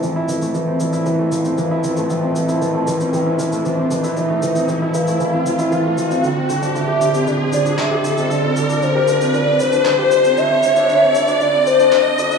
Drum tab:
SH |x-xxx-xxx-xxx-xx|x-xxx-xxx-xxx-xx|x-xxx-xxx-xxx-xx|x-xxx-xxx-xxx-xx|
CP |----------------|----------------|----------------|------------x---|

SH |x-xxx-xxx-xxx-xx|x-xxx-xxx-xxx-xx|
CP |------------x---|------------x---|